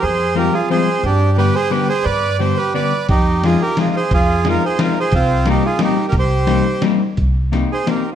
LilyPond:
<<
  \new Staff \with { instrumentName = "Bandoneon" } { \time 3/4 \key c \minor \tempo 4 = 177 <aes' c''>4 <g' bes'>8 <f' aes'>8 <aes' c''>4 | <d' g'>4 <g' b'>8 <aes' c''>8 <g' b'>8 <aes' c''>8 | <b' d''>4 <g' c''>8 <g' b'>8 <b' d''>4 | <ees' g'>4 <f' aes'>8 <g' bes'>8 <f' aes'>8 <aes' c''>8 |
<f' aes'>4 <f' bes'>8 <aes' c''>8 <f' bes'>8 <aes' c''>8 | <c' f'>4 <ees' g'>8 <f' aes'>8 <ees' g'>8. <g' bes'>16 | <g' c''>2 r4 | r4. <aes' c''>8 <g' bes'>8. r16 | }
  \new Staff \with { instrumentName = "Hollow-body jazz guitar" } { \time 3/4 \key c \minor r4 <f g aes c' f'>8 r8 <f g aes c' f'>8 r8 | r4 <d g b d' g'>8 r8 <d g b d' g'>8 r8 | r4 <d g b d' g'>8 r8 <d g b d' g'>8 r8 | r4 <f aes c' ees' f'>8 r8 <f aes c' ees' f'>8 r8 |
r4 <f aes c' ees' f'>8 r8 <f aes c' ees' f'>8 r8 | r4 <g bes c' ees' g'>8 r8 <g bes c' ees' g'>8 r8 | r4 <g bes c' ees' g'>8 r8 <g bes c' ees' g'>8 r8 | r4 <bes c' ees' g'>8 r8 <bes c' ees' g'>8 r8 | }
  \new Staff \with { instrumentName = "Upright bass" } { \clef bass \time 3/4 \key c \minor f,2 r4 | g,2 r4 | g,2 r4 | f,2 r4 |
f,2 r4 | c,2 r4 | c,2 r4 | c,2 r4 | }
  \new DrumStaff \with { instrumentName = "Drums" } \drummode { \time 3/4 r4 r4 r4 | r4 r4 r4 | r4 r4 r4 | <bd cymr>4 <cymr sn>4 <cymr sn>4 |
<bd cymr>4 <cymr sn>4 <cymr sn>4 | <bd cymr>4 <cymr sn>4 <cymr sn>4 | <bd cymr>4 <cymr sn>4 <cymr sn>4 | <hh bd>4 <hh sn>4 <hh sn>4 | }
>>